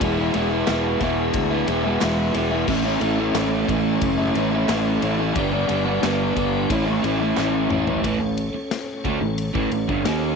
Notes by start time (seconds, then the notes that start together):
0.00 E1 E3 G#3 B3 E4 G#4 E5, kick, ride
0.17 G#3 B3 E4
0.34 E1 E3 G#3 B3 E4, ride
0.50 G#3 B3 E4
0.67 E1 E3 G#3 B3 E4, snare, clap, ride
1.00 E1 E3 G#3 B3 E4, kick, snare, ride
1.34 D2, kick, ride
1.50 G#3 B3 E4
1.66 E1 E3 G#3 B3 E4, ride
1.84 G#3 B3 E4
2.01 E1 E3 G#3 B3 E4, snare, clap, ride
2.34 E1 E3 G#3 B3 E4, ride
2.50 G#3 B3 E4
2.67 A1 A2 E3 A3 C#4 E4 A4 E5, kick, crash
2.83 A3 C#4 E4
3.00 A1 E3 A3 C#4 E4, ride
3.18 A3 C#4 E4
3.34 A1 A2 E3 A3 C#4 E4, snare, clap, ride
3.67 A1 E3 A3 C#4 E4, kick, ride
4.01 F#1, kick, ride
4.18 A3 C#4 E4
4.34 A1 E3 A3 C#4 E4, ride
4.52 A3 C#4 E4
4.68 A1 A2 E3 A3 C#4 E4, snare, clap, ride
5.01 A1 E3 A3 C#4 E4, ride
5.17 A3 C#4 E4
5.34 G1 G2 D3 G3 B3 D4 D5, kick, ride
5.38 G4
5.51 G3 B3 D4
5.68 G1 D3 G3 B3 D4, ride
5.85 G3 B3 D4
6.01 G1 G2 D3 G3 B3 D4, snare, clap, ride
6.35 G1 D3 G3 B3 D4, kick, ride
6.69 A1 A2 E3 A3 C#4 E4 C#5, kick, ride
6.85 A3 C#4 E4
7.03 A1 E3 A3 C#4 E4, ride
7.20 A3 C#4 E4
7.37 A1 A2 E3 A3 C#4 E4, snare, clap
7.70 A1 E3 A3 C#4 E4, mid tom
7.86 A3 C#4 E4, floor tom
8.03 A1 A2 E3 C#4 A4 C#5, kick, ride
8.20 A1 A2 E3
8.37 ride
8.54 muted fingered electric bass stroke, muted overdriven electric guitar stroke
8.71 snare, ride
9.05 D2 D3 A3, kick, ride
9.21 A1 A2 E3
9.38 ride
9.54 A1 A2 E3, kick
9.71 A1 A2 E3, ride
9.88 G1 G2 D3, kick
10.05 D#2 D#3 A#3 D#4, snare, ride